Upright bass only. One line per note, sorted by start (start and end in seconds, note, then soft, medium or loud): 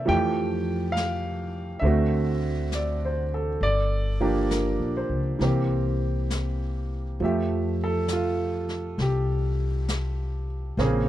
0.08 1.79 F2 medium
1.82 3.56 D2 medium
3.61 4.75 G1 medium
4.79 5.07 A#1 medium
5.09 5.37 C#2 medium
5.39 7.16 C2 medium
7.20 8.96 F2 medium
8.98 10.75 C2 medium
10.77 11.09 A#1 medium